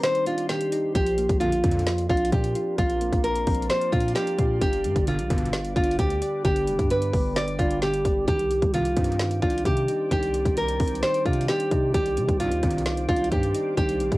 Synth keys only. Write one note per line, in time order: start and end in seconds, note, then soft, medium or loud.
0.00 0.03 D#3 loud
0.00 0.48 D#3 medium
0.00 0.49 G3 medium
0.00 0.95 C4 medium
0.00 0.26 D4 medium
0.00 0.72 D#4 medium
0.26 0.95 D4 medium
0.49 0.95 D#3 medium
0.72 0.95 D#4 medium
0.95 1.40 F3 medium
1.18 2.32 A#3 medium
1.41 1.86 F3 medium
1.64 2.78 C4 medium
1.87 2.31 F3 medium
2.10 3.24 D4 medium
2.32 2.77 F3 medium
2.55 3.70 F4 medium
2.78 3.23 F3 loud
3.01 4.16 A#3 medium
3.24 3.69 F3 medium
3.47 4.62 C4 medium
3.70 4.15 F3 medium
3.93 4.62 D4 medium
4.16 4.62 F3 medium
4.39 4.61 F4 loud
4.61 5.06 D3 loud
4.85 5.99 G3 medium
5.07 5.52 D3 medium
5.30 6.45 B3 medium
5.53 5.98 D3 medium
5.76 6.90 D4 medium
5.99 6.44 D3 medium
6.22 7.36 D5 loud
6.45 6.89 D3 loud
6.68 7.82 G3 medium
6.90 7.35 D3 medium
7.14 8.28 B3 medium
7.36 7.81 D3 medium
7.59 8.28 D4 medium
7.82 8.28 D3 medium
8.05 8.28 D5 medium
8.28 8.72 D#3 loud
8.51 9.65 G3 medium
8.74 9.18 D#3 medium
8.97 10.11 C4 medium
9.20 9.64 D#3 medium
9.43 10.57 D4 medium
9.65 10.10 D#3 medium
9.88 11.03 D#4 medium
10.11 10.55 D#3 loud
10.34 11.49 G3 medium
10.57 11.02 D#3 medium
10.80 11.94 C4 medium
11.03 11.47 D#3 medium
11.26 12.40 D4 medium
11.48 11.93 D#3 medium
11.72 12.86 D#4 medium
11.94 12.39 D#3 medium
12.18 13.32 G3 medium
12.40 12.85 D#3 medium
12.63 13.78 C4 medium
12.86 13.31 D#3 loud
13.09 14.18 D4 medium
13.32 13.76 D#3 medium
13.55 14.18 D#4 medium
13.77 14.18 D#3 loud
14.00 14.18 G3 medium